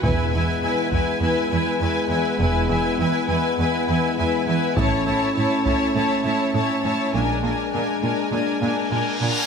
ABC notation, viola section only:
X:1
M:4/4
L:1/8
Q:1/4=101
K:Emix
V:1 name="Viola section"
E E E E E E E E | E E E E E E E E | E E E E E E E E | D D D D D D D D |]